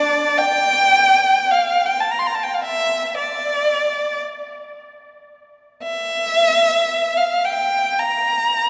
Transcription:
0.00 0.36 D4 medium
0.00 0.37 D5 medium
0.38 1.50 G5 medium
1.51 1.84 F5 medium
1.86 1.99 G5 medium
2.00 2.10 A5 medium
2.11 2.19 A#5 medium
2.19 2.26 C6 medium
2.27 2.34 A#5 medium
2.35 2.43 A5 medium
2.43 2.52 G5 medium
2.54 2.64 F5 medium
2.62 3.17 E5 medium
3.18 4.21 D5 medium
5.84 7.14 E5 medium
7.17 7.45 F5 medium
7.45 7.99 G5 medium
7.99 8.70 A#5 medium

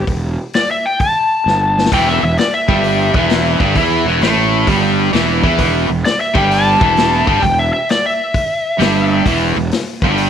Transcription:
0.07 0.36 E1 medium
0.07 kick medium
0.07 open hi-hat soft
0.53 0.69 D5 medium
0.53 snare loud
0.53 open hi-hat medium
0.71 0.85 E5 medium
0.86 0.99 G5 medium
1.00 1.89 A5 medium
1.00 kick medium
1.00 open hi-hat medium
1.46 1.88 G1 medium
1.46 snare medium
1.78 snare medium
1.86 snare loud
1.92 2.20 E1 medium
1.92 2.21 E2 medium
1.92 2.22 E3 medium
1.92 2.07 G5 medium
1.92 kick loud
1.92 open hi-hat medium
1.92 crash medium
2.09 2.22 E5 loud
2.23 2.37 E1 medium
2.23 2.35 E2 medium
2.23 2.38 E5 medium
2.38 2.53 D5 medium
2.38 snare loud
2.38 open hi-hat medium
2.54 3.87 E5 medium
2.68 3.11 G1 medium
2.68 3.13 G2 medium
2.68 3.14 G3 loud
2.68 kick loud
2.84 open hi-hat medium
3.14 3.57 E1 medium
3.14 3.59 E2 medium
3.14 3.60 E3 loud
3.14 kick loud
3.29 snare loud
3.29 open hi-hat medium
3.60 3.74 G1 medium
3.60 3.75 G2 medium
3.60 3.75 G3 loud
3.60 kick loud
3.76 4.04 E2 medium
3.76 4.05 E3 medium
3.76 4.06 E4 medium
3.76 kick loud
3.76 open hi-hat medium
4.05 4.20 E1 medium
4.05 4.21 E2 medium
4.05 4.21 E3 medium
4.21 4.64 A1 loud
4.21 4.67 A2 loud
4.21 4.68 A3 loud
4.21 snare loud
4.21 open hi-hat soft
4.67 5.10 G1 medium
4.67 5.13 G2 medium
4.67 5.13 G3 loud
4.67 kick medium
4.67 open hi-hat medium
5.13 5.42 E1 medium
5.13 5.43 E2 medium
5.13 5.42 E3 loud
5.13 snare loud
5.13 open hi-hat medium
5.43 5.58 E2 loud
5.43 5.58 E3 loud
5.43 5.59 E4 loud
5.43 kick loud
5.59 5.87 E1 medium
5.59 5.89 E2 medium
5.59 5.89 E3 medium
5.59 kick loud
5.59 open hi-hat medium
5.90 6.04 E1 medium
5.90 6.02 E2 medium
6.05 6.20 D5 loud
6.05 snare loud
6.05 open hi-hat medium
6.21 6.35 E5 medium
6.34 6.78 G1 medium
6.34 6.80 G2 loud
6.34 6.80 G3 loud
6.34 6.51 G5 medium
6.34 kick loud
6.51 7.41 A5 medium
6.51 open hi-hat medium
6.80 7.24 E1 medium
6.80 7.26 E2 medium
6.80 7.26 E3 loud
6.80 kick loud
6.97 snare loud
6.97 open hi-hat medium
7.27 7.42 G1 loud
7.27 7.41 G2 medium
7.27 7.43 G3 loud
7.27 kick loud
7.42 7.71 E1 medium
7.42 7.67 E2 medium
7.42 7.57 G5 medium
7.42 kick medium
7.42 open hi-hat medium
7.59 7.72 E5 medium
7.73 7.88 E5 medium
7.89 8.05 D5 medium
7.89 snare loud
7.89 open hi-hat medium
8.06 9.38 E5 loud
8.34 kick medium
8.34 open hi-hat medium
8.79 9.22 G1 medium
8.79 9.25 G2 medium
8.79 9.25 G3 medium
8.79 snare loud
8.79 open hi-hat medium
9.25 9.54 E1 medium
9.25 9.56 E2 medium
9.25 9.56 E3 loud
9.25 kick medium
9.25 open hi-hat medium
9.56 9.71 E1 medium
9.56 9.69 E2 medium
9.71 snare loud
9.71 open hi-hat medium
10.02 10.30 G1 medium
10.02 10.30 G2 medium
10.02 10.30 G3 loud
10.02 kick loud
10.18 open hi-hat medium

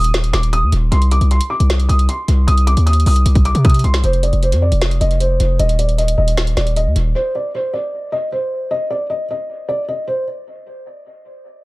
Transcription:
0.00 0.32 D#1 loud
0.00 0.31 D#6 medium
0.04 closed hi-hat medium
0.14 snare loud
0.14 closed hi-hat medium
0.24 closed hi-hat medium
0.33 0.64 D#1 loud
0.33 0.49 D6 medium
0.33 snare loud
0.33 closed hi-hat medium
0.43 closed hi-hat medium
0.53 0.68 D#6 medium
0.53 closed hi-hat medium
0.63 0.72 D#2 loud
0.72 0.91 D#1 loud
0.72 closed hi-hat medium
0.92 1.20 C2 loud
0.92 1.07 C6 loud
0.92 closed hi-hat medium
1.02 closed hi-hat medium
1.11 1.27 D6 medium
1.11 closed hi-hat medium
1.21 1.40 C2 loud
1.21 closed hi-hat medium
1.31 1.47 C6 medium
1.31 closed hi-hat medium
1.41 closed hi-hat medium
1.50 1.87 D6 medium
1.60 1.88 C2 loud
1.60 closed hi-hat medium
1.70 snare loud
1.70 closed hi-hat medium
1.80 closed hi-hat medium
1.89 2.08 C2 loud
1.89 2.04 D#6 medium
1.89 closed hi-hat medium
1.99 closed hi-hat medium
2.09 2.45 C6 medium
2.09 closed hi-hat medium
2.28 2.47 C2 loud
2.28 closed hi-hat medium
2.47 2.76 C2 loud
2.47 2.63 D#6 medium
2.47 closed hi-hat medium
2.58 closed hi-hat medium
2.67 2.83 D6 medium
2.67 closed hi-hat medium
2.77 3.05 D#2 loud
2.77 closed hi-hat medium
2.86 3.02 D#6 medium
2.86 closed hi-hat medium
2.93 closed hi-hat medium
3.00 closed hi-hat soft
3.06 3.25 C2 loud
3.06 3.43 D#6 medium
3.06 open hi-hat medium
3.16 closed hi-hat medium
3.26 3.54 C2 loud
3.26 closed hi-hat medium
3.35 kick medium
3.35 closed hi-hat medium
3.45 3.61 D6 medium
3.45 closed hi-hat medium
3.55 3.83 C3 loud
3.55 closed hi-hat medium
3.65 3.80 D#6 medium
3.65 kick loud
3.65 closed hi-hat medium
3.69 closed hi-hat medium
3.74 closed hi-hat medium
3.79 closed hi-hat medium
3.84 4.03 C2 loud
3.84 4.00 C6 medium
3.84 closed hi-hat soft
3.94 snare loud
3.94 closed hi-hat medium
4.04 4.32 F1 loud
4.04 4.20 C5 loud
4.04 closed hi-hat medium
4.13 closed hi-hat soft
4.23 4.39 D5 medium
4.23 closed hi-hat medium
4.33 4.54 F1 loud
4.33 closed hi-hat medium
4.43 4.58 C5 medium
4.43 closed hi-hat medium
4.52 4.71 F2 loud
4.52 closed hi-hat medium
4.62 4.99 D5 medium
4.72 5.00 F1 loud
4.72 closed hi-hat medium
4.82 snare loud
4.82 closed hi-hat medium
4.91 closed hi-hat medium
5.01 5.38 F1 loud
5.01 5.16 D#5 medium
5.01 closed hi-hat medium
5.11 closed hi-hat medium
5.20 5.57 C5 medium
5.20 closed hi-hat medium
5.40 5.59 F1 loud
5.40 closed hi-hat medium
5.59 6.16 D#1 loud
5.59 5.75 D#5 medium
5.59 closed hi-hat medium
5.69 closed hi-hat soft
5.79 5.94 D5 medium
5.79 closed hi-hat medium
5.89 closed hi-hat medium
5.98 6.14 D#5 medium
5.98 closed hi-hat medium
6.08 closed hi-hat medium
6.18 6.55 D#1 loud
6.18 6.54 D#5 medium
6.28 closed hi-hat medium
6.37 snare loud
6.37 closed hi-hat medium
6.47 closed hi-hat medium
6.57 6.88 D#1 loud
6.57 6.72 D5 medium
6.57 snare medium
6.57 closed hi-hat medium
6.67 closed hi-hat medium
6.76 6.92 D#5 medium
6.76 closed hi-hat medium
6.86 6.95 D#2 loud
6.96 7.14 D#1 loud
6.96 closed hi-hat medium
7.15 7.31 C5 medium
7.35 7.51 D5 medium
7.55 7.70 C5 medium
7.73 8.10 D5 medium
8.12 8.28 D#5 medium
8.32 8.69 C5 medium
8.71 8.86 D#5 medium
8.90 9.06 D5 medium
9.10 9.25 D#5 medium
9.31 9.67 D#5 medium
9.69 9.84 D5 medium
9.88 10.04 D#5 medium
10.07 10.23 C5 medium

